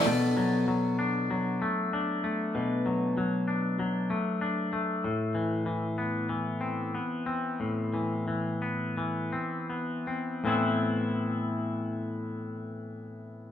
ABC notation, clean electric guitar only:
X:1
M:4/4
L:1/8
Q:1/4=94
K:Ador
V:1 name="Clean electric guitar"
B,, F, F, D F, A, D A, | B,, F, F, D F, A, D A, | A,, E, E, B, E, C B, C | A,, E, E, B, E, C B, C |
[A,,E,B,CE]8 |]